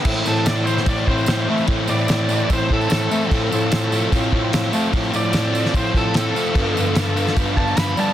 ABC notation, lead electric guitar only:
X:1
M:4/4
L:1/8
Q:1/4=148
K:Am
V:1 name="Lead electric guitar"
z A d c d c2 z | z d3 c A A2- | A4 z4 | z d3 c A A2- |
A4 z a b a |]